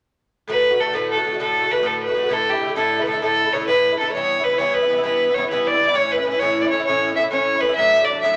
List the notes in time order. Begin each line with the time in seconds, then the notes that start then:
0.48 A2 D3 A3 F#4 B4
0.71 D3 A3 F#4
0.78 A2 D3 A3 F#4 A4
0.85 D3 A3 F#4
0.93 A2 D3 A3 F#4 B4
1.11 A4
1.16 D3 A3 F#4
1.25 A2 D3 A3 F#4
1.32 D3 A3 F#4
1.40 A2 D3 A3 F#4 A4
1.62 D3 A3 F#4
1.70 A2 D3 A3 F#4 B4
1.76 D3 A3 F#4
1.83 A2 D3 A3 F#4 A4
2.03 B4
2.08 D3 A3 F#4
2.14 A2 D3 A3 F#4
2.23 D3 A3 F#4
2.29 A2 D3 A3 E4
2.33 A4
2.50 A3 E4 G4
2.55 D3
2.60 A2 D3 A3 E4
2.66 D3 A3 E4
2.76 A2 D3 A3 E4 A4
2.99 D3 A3 E4 B4
3.06 A2 D3 A3 E4 A4
3.13 D3 A3 E4
3.21 A2 D3 A3 E4 A4
3.45 D3 A3 E4
3.53 A2 D3 A3 E4 C#5
3.61 D3 A3 E4
3.67 A2 D3 A3 E4 B4
3.92 D3 A3 E4
3.99 A2 D3 A3 A4
4.03 E4
4.08 D3 A3 E4
4.13 G2 E3 C#5
4.17 B3 E4
4.40 E3 B3 E4
4.44 G2 E3 B4
4.49 B3 E4
4.54 E3 B3 C#5
4.59 G2 E3 B3 E4
4.74 B4
4.82 E3 B3 E4
4.90 G2 E3 B3 E4
4.98 E3 B3 E4
5.04 G2 E3 B3 E4 B4
5.29 E3 B3 E4
5.34 G2 E3 B3 C#5
5.39 E4
5.43 E3 B3 E4
5.50 G2 E3 B3 E4 B4
5.66 D5
5.73 E3 B3 E4
5.80 G2 E3 B3 E4
5.87 E3 B3 E4
5.94 A2 E3 C#4 E4 C#5
6.12 B4
6.17 E3 C#4 E4 B4
6.25 A2 E3 C#4 E4 B4
6.32 E3 C#4 E4
6.39 A2 E3 C#4 C#5
6.44 E4
6.62 E4 D5
6.67 E3 C#4 C#5
6.71 A2 E3 C#4 E4
6.80 E3 C#4 E4
6.84 A2 C#5
6.89 E3 C#4 E4
7.10 E3 C#4 E4
7.16 A2 E3 E5
7.20 C#4 E4
7.25 E3 C#4
7.30 A2 E3 C#4 E4 C#5
7.55 C#4 E4
7.59 A2 E3 B4
7.63 C#4 E4
7.68 E3 C#4 E4
7.75 A2 F#3 E5
7.80 A3 D4
8.01 F#3 A3 D4 D5
8.08 A2 F#3 A3 D4
8.15 F#3 A3 D4
8.21 A2 F#3 A3 D4 E5